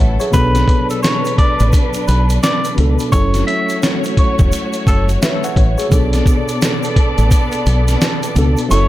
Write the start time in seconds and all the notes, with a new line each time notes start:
Already playing: F#3 E4 A4 B4 C#5 E5 F#5
0.00 A1
0.20 G#4 C#5, closed hi-hat, shaker
0.30 B1 B2 F#3 B3 D4 B4, kick, closed hi-hat, shaker
0.35 A4
0.55 snare, closed hi-hat, shaker
0.68 kick, closed hi-hat
0.90 A4, closed hi-hat, shaker
1.02 C#5, snare, closed hi-hat, shaker
1.25 closed hi-hat, shaker
1.38 D5, kick, closed hi-hat
1.60 A1, closed hi-hat, shaker
1.73 kick, closed hi-hat, shaker
1.93 closed hi-hat, shaker
2.07 B1 B4, closed hi-hat, shaker
2.30 closed hi-hat, shaker
2.43 D5, snare, closed hi-hat, shaker
2.64 closed hi-hat, shaker
2.76 C#2 B2 B3 D4, closed hi-hat
2.80 A4
2.99 closed hi-hat, shaker
3.10 F#1 F#3 A3 C#4 E4 F#4 C#5, kick, closed hi-hat, shaker
3.15 A4
3.34 snare, closed hi-hat, shaker
3.47 E5, closed hi-hat
3.69 closed hi-hat, shaker
3.82 snare, closed hi-hat, shaker
4.04 closed hi-hat, shaker
4.17 C#5, kick, closed hi-hat
4.39 E1, kick, closed hi-hat, shaker
4.52 closed hi-hat, shaker
4.73 closed hi-hat, shaker
4.87 F#1 A4, kick, closed hi-hat, shaker
5.09 closed hi-hat, shaker
5.22 B4 E5, snare, closed hi-hat, shaker
5.44 C#5 F#5, closed hi-hat, shaker
5.56 A1, kick, closed hi-hat
5.78 G#4 C#5, closed hi-hat, shaker
5.88 B1 B2 B3 D4 A4 D5, kick, closed hi-hat, shaker
5.93 A4
6.13 snare, closed hi-hat, shaker
6.26 kick, closed hi-hat, shaker
6.48 closed hi-hat, shaker
6.62 snare, closed hi-hat, shaker
6.83 closed hi-hat, shaker
6.96 kick, closed hi-hat
7.18 A1, closed hi-hat, shaker
7.31 kick, closed hi-hat, shaker
7.52 closed hi-hat, shaker
7.66 B1, closed hi-hat, shaker
7.88 snare, closed hi-hat, shaker
8.01 snare, closed hi-hat, shaker
8.23 closed hi-hat, shaker
8.34 C#2 B2 B3 D4, closed hi-hat, shaker
8.38 A4
8.57 closed hi-hat, shaker
8.68 F#1 F#3 C#4 E4 A4 C#5, closed hi-hat, shaker
8.73 A4